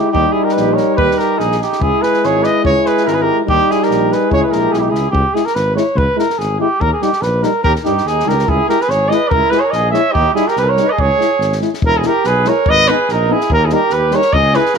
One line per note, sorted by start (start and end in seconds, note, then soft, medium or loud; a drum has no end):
0.00 0.14 G#3 medium
0.00 0.10 D#4 medium
0.00 0.15 E4 medium
0.00 0.11 G4 medium
0.11 0.26 D#2 loud
0.11 1.64 G3 medium
0.11 0.34 D#4 medium
0.11 1.64 D#4 medium
0.11 0.33 G4 loud
0.11 kick medium
0.32 0.46 E4 medium
0.32 0.45 G#4 medium
0.44 0.55 G4 medium
0.44 0.53 A#4 medium
0.49 0.75 B4 medium
0.49 snare soft
0.55 0.80 A#1 medium
0.55 0.75 G4 medium
0.55 snare soft
0.73 0.94 A#4 medium
0.73 0.96 C#5 medium
0.78 snare soft
0.94 1.09 D#2 loud
0.94 1.17 G4 medium
0.94 1.19 B4 loud
0.94 kick medium
1.11 snare soft
1.17 1.39 G4 medium
1.17 1.40 A#4 medium
1.17 snare soft
1.38 1.62 A#1 medium
1.38 1.58 D#4 medium
1.38 1.60 G#4 medium
1.38 snare soft
1.52 snare soft
1.59 1.81 D#4 medium
1.59 1.83 G4 medium
1.59 snare soft
1.73 snare soft
1.80 1.92 C#2 medium
1.80 3.43 G#3 medium
1.80 2.04 E4 medium
1.80 3.44 E4 medium
1.80 2.03 G#4 loud
1.80 kick medium
2.02 2.22 G#4 medium
2.02 2.27 B4 medium
2.02 snare soft
2.14 snare soft
2.22 2.46 G#1 medium
2.22 2.44 G#4 medium
2.22 2.46 C#5 medium
2.22 snare soft
2.42 2.62 B4 medium
2.42 2.65 D#5 medium
2.42 snare soft
2.63 2.75 C#2 loud
2.63 2.83 G#4 medium
2.63 2.88 C#5 loud
2.63 kick medium
2.83 3.06 G#4 medium
2.83 3.08 B4 medium
2.83 snare soft
2.98 snare soft
3.04 3.29 G#1 medium
3.04 3.13 E4 medium
3.04 3.15 A#4 medium
3.04 snare soft
3.12 3.24 G#4 medium
3.12 3.23 B4 medium
3.22 3.39 G4 medium
3.22 3.39 A#4 medium
3.44 3.59 D#2 loud
3.44 4.30 G3 medium
3.44 4.31 D#4 medium
3.44 kick medium
3.49 3.71 D#4 medium
3.49 3.72 G4 loud
3.70 3.81 E4 medium
3.70 3.85 G#4 medium
3.70 snare soft
3.80 4.16 G4 medium
3.80 4.14 A#4 medium
3.80 snare soft
3.89 4.12 A#1 medium
3.89 snare soft
4.12 4.33 G#4 medium
4.12 4.32 B4 medium
4.12 snare soft
4.29 4.42 C#2 loud
4.29 4.97 G#3 medium
4.29 4.97 E4 medium
4.29 4.42 C#5 loud
4.29 kick medium
4.35 4.43 G#4 medium
4.43 4.59 G#4 medium
4.43 4.53 B4 medium
4.50 4.69 A#1 medium
4.50 4.73 A#4 medium
4.50 snare soft
4.58 4.78 G4 medium
4.71 4.90 B1 medium
4.71 4.81 G#4 medium
4.71 snare soft
4.77 4.83 E4 medium
4.77 4.91 G4 medium
4.81 4.93 D#4 medium
4.90 5.11 C#2 medium
4.90 5.07 E4 medium
4.90 5.06 G#4 medium
4.95 snare soft
5.11 5.24 C#2 loud
5.11 5.35 G4 medium
5.11 kick medium
5.34 5.42 G#3 medium
5.34 5.43 E4 medium
5.34 5.47 G#4 medium
5.34 snare soft
5.45 5.56 A#4 medium
5.45 snare soft
5.54 5.78 G#1 medium
5.54 5.75 B4 medium
5.54 snare soft
5.74 5.83 G#3 medium
5.74 5.85 E4 medium
5.74 5.98 C#5 medium
5.74 snare soft
5.95 6.07 C#2 loud
5.95 6.18 B4 medium
5.95 kick medium
6.15 6.24 G#3 medium
6.15 6.25 E4 medium
6.15 6.40 A#4 medium
6.19 snare soft
6.30 snare soft
6.37 6.61 G#1 medium
6.37 6.59 G#4 medium
6.37 snare soft
6.59 6.68 G#3 medium
6.59 6.68 E4 medium
6.59 6.82 G4 medium
6.80 6.92 D#2 loud
6.80 6.92 A#4 loud
6.80 kick medium
6.93 7.04 G#4 medium
7.01 7.09 G3 medium
7.01 7.11 D#4 medium
7.01 7.23 G4 medium
7.01 snare soft
7.13 snare soft
7.21 7.44 A#1 medium
7.21 7.45 B4 medium
7.21 snare soft
7.43 7.52 G3 medium
7.43 7.51 D#4 medium
7.43 7.63 A#4 medium
7.43 snare soft
7.63 7.75 D#2 loud
7.63 7.73 G4 medium
7.63 7.73 A#4 loud
7.63 kick medium
7.76 snare soft
7.84 8.03 G2 medium
7.84 7.94 G3 medium
7.84 7.92 D#4 medium
7.84 8.08 D#4 medium
7.84 8.08 G4 medium
7.84 snare soft
7.98 snare soft
8.05 8.24 D#2 medium
8.05 8.27 D#4 medium
8.05 8.30 G#4 medium
8.05 snare soft
8.20 snare soft
8.25 8.45 C#2 loud
8.25 8.34 G3 soft
8.25 8.35 D#4 medium
8.25 8.48 G4 medium
8.25 8.50 A#4 medium
8.30 snare soft
8.39 snare soft
8.46 8.60 C#2 loud
8.46 8.68 E4 medium
8.46 8.68 G#4 medium
8.46 kick medium
8.67 8.76 G#3 medium
8.67 8.77 E4 medium
8.67 8.82 G4 medium
8.67 8.83 A#4 medium
8.67 snare soft
8.81 8.91 G#4 medium
8.81 8.91 B4 medium
8.81 snare soft
8.87 9.11 G#1 medium
8.87 9.14 G#4 medium
8.87 9.10 C#5 medium
8.87 snare soft
9.09 9.19 G#3 medium
9.09 9.19 E4 medium
9.09 9.30 D#5 medium
9.09 snare soft
9.13 9.35 B4 medium
9.28 9.42 C#2 medium
9.28 9.51 A#4 loud
9.28 kick medium
9.34 9.56 E4 medium
9.50 9.59 G#3 medium
9.50 9.60 E4 medium
9.50 9.61 B4 loud
9.50 snare soft
9.55 9.66 G#4 medium
9.60 9.72 C#5 medium
9.65 9.76 A#4 medium
9.71 9.96 A#1 medium
9.71 9.93 G#4 medium
9.71 9.90 D#5 medium
9.71 snare soft
9.91 10.00 G#3 medium
9.91 10.03 E4 medium
9.91 10.13 C#5 medium
9.91 10.14 E5 medium
9.91 snare soft
10.12 10.27 D#2 loud
10.12 10.33 D#4 medium
10.12 10.34 G4 loud
10.12 kick medium
10.34 10.43 G3 medium
10.34 10.45 D#4 medium
10.34 10.49 E4 medium
10.34 10.50 G#4 medium
10.34 snare soft
10.47 10.57 G4 medium
10.47 10.60 A#4 medium
10.47 snare soft
10.56 10.80 C2 medium
10.56 10.66 G4 medium
10.56 10.71 B4 medium
10.56 snare soft
10.64 10.88 A#4 medium
10.69 10.91 C#5 medium
10.76 10.84 G3 medium
10.76 snare soft
10.81 10.89 D#4 medium
10.86 10.94 B4 medium
10.86 11.01 D#5 medium
10.92 11.58 G#4 medium
10.98 11.11 C#2 loud
10.98 11.62 C#5 loud
10.98 kick medium
11.16 11.26 G#3 medium
11.16 11.29 E4 medium
11.21 snare soft
11.39 11.62 G#1 medium
11.39 snare soft
11.53 snare soft
11.60 11.69 G#3 soft
11.60 11.70 E4 medium
11.60 snare soft
11.74 snare soft
11.81 12.05 E1 loud
11.81 11.96 E4 medium
11.81 11.99 A#4 loud
11.81 kick loud
11.96 12.06 E4 soft
11.96 12.08 G#4 medium
12.02 12.11 G#3 medium
12.02 12.12 E4 medium
12.02 12.28 G4 medium
12.02 snare soft
12.06 12.27 A#4 medium
12.24 12.48 B1 medium
12.24 12.49 G#4 medium
12.24 12.50 B4 medium
12.24 snare soft
12.45 12.53 G#3 medium
12.45 12.54 E4 medium
12.45 12.72 A#4 medium
12.45 12.71 C#5 loud
12.45 snare soft
12.66 12.90 G#1 loud
12.66 12.90 D#5 loud
12.66 kick medium
12.70 12.93 B4 medium
12.87 12.96 B3 medium
12.87 12.97 D#4 medium
12.87 13.12 B4 loud
12.87 snare soft
12.91 13.13 G#4 medium
13.09 13.32 A#1 medium
13.09 13.34 D#4 medium
13.09 13.33 A#4 medium
13.09 snare soft
13.28 13.36 B3 medium
13.28 13.38 D#4 medium
13.32 13.51 E4 medium
13.32 13.51 G#4 medium
13.41 snare soft
13.50 13.73 D#2 loud
13.50 13.66 A#4 loud
13.50 kick medium
13.54 13.66 G4 medium
13.65 13.75 E4 medium
13.65 13.74 G#4 medium
13.70 13.79 G3 medium
13.70 13.81 D#4 medium
13.70 13.96 G4 medium
13.70 13.94 A#4 loud
13.70 snare soft
13.90 14.14 D#2 medium
13.90 14.16 B4 medium
13.90 snare soft
13.96 14.17 G4 medium
14.11 14.20 G3 medium
14.11 14.22 D#4 medium
14.11 14.34 C#5 loud
14.11 snare soft
14.16 14.38 A#4 medium
14.22 snare soft
14.33 14.57 C#2 loud
14.33 14.58 G#4 medium
14.33 14.57 D#5 loud
14.33 kick medium
14.54 14.62 G#3 medium
14.54 14.63 E4 medium
14.54 14.77 G#4 medium
14.54 14.77 B4 medium
14.54 snare soft
14.66 snare soft
14.74 snare soft